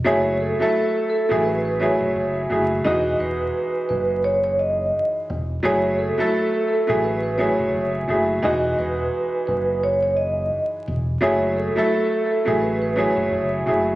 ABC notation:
X:1
M:4/4
L:1/16
Q:"Swing 16ths" 1/4=86
K:F#dor
V:1 name="Vibraphone"
c2 A4 A2 B B c3 z3 | d2 B4 B2 c c d3 z3 | c2 A4 A2 B B c3 z3 | d2 B4 B2 c c d3 z3 |
c2 A4 A2 B B c3 z3 |]
V:2 name="Upright piano"
[F,A,EG]3 [F,A,EA]4 [F,A,EG]3 [F,A,EG]4 [F,A,EG]2 | [E,G,DF]12- [E,G,DF]3 z | [F,A,EG]3 [F,A,EA]4 [F,A,EG]3 [F,A,EG]4 [F,A,EG]2 | [E,G,DF]12- [E,G,DF]3 z |
[F,A,EG]3 [F,A,EA]4 [F,A,EG]3 [F,A,EG]4 [F,A,EG]2 |]
V:3 name="Fingered electric bass" clef=bass
F,,,3 z4 A,,,4 F,,, F,,,2 F,,,2 | E,,,2 E,,,2 z2 F,,,6 z2 E,,,2 | F,,,3 z4 A,,,4 F,,, F,,,2 F,,,2 | E,,,2 E,,,2 z2 F,,,6 z2 E,,,2 |
F,,,3 z4 A,,,4 F,,, F,,,2 F,,,2 |]